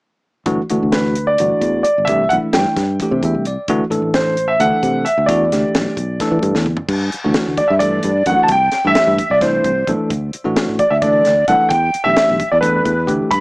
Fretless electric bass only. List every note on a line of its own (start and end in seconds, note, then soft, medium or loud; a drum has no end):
0.46 0.57 G1 medium
0.71 0.81 D2 medium
0.82 1.36 D2 medium
1.40 1.50 G1 medium
1.61 1.83 E2 medium
1.98 2.07 G1 medium
2.07 2.29 C2 medium
2.32 2.42 B1 medium
2.43 muted fretless electric bass stroke soft
2.54 2.64 G2 medium
2.77 2.98 G2 medium
3.00 muted fretless electric bass stroke soft
3.11 3.22 C3 medium
3.23 3.33 E2 medium
3.35 3.56 C2 medium
3.68 3.79 D2 medium
3.90 4.01 A1 medium
4.02 4.56 A1 medium
4.60 4.71 D2 medium
4.83 5.05 C3 medium
5.18 5.28 D2 medium
5.29 5.51 E2 medium
5.52 5.63 D2 medium
5.63 muted fretless electric bass stroke soft
5.75 5.86 B1 medium
5.97 6.19 B1 medium
6.20 muted fretless electric bass stroke soft
6.31 6.42 E3 medium
6.42 6.54 G2 medium
6.55 6.77 E2 medium
6.88 7.11 G2 medium
7.14 muted fretless electric bass stroke soft
7.26 7.36 D2 medium
7.37 muted fretless electric bass stroke soft
7.47 7.58 D2 medium
7.70 8.03 G2 medium
8.04 8.26 G2 medium
8.26 8.38 F#2 medium
8.39 muted fretless electric bass stroke soft
8.49 8.71 C2 medium
8.85 8.95 G2 medium
8.97 muted fretless electric bass stroke soft
9.07 9.18 G2 medium
9.30 9.62 C2 medium
9.64 9.86 C2 medium
9.88 9.98 B1 medium
9.99 muted fretless electric bass stroke soft
10.10 10.32 D2 medium
10.35 muted fretless electric bass stroke soft
10.45 10.56 A1 medium
10.57 muted fretless electric bass stroke soft
10.68 10.79 A1 medium
10.91 11.23 D2 medium
11.26 11.47 D2 medium
11.48 11.59 C2 medium
11.60 muted fretless electric bass stroke soft
11.71 11.92 E2 medium
11.95 muted fretless electric bass stroke soft
12.05 12.16 B1 medium
12.19 muted fretless electric bass stroke soft
12.30 12.40 B1 medium
12.52 12.84 E2 medium
12.85 13.07 E2 medium
13.08 13.19 D2 medium
13.22 muted fretless electric bass stroke soft
13.31 13.40 G2 medium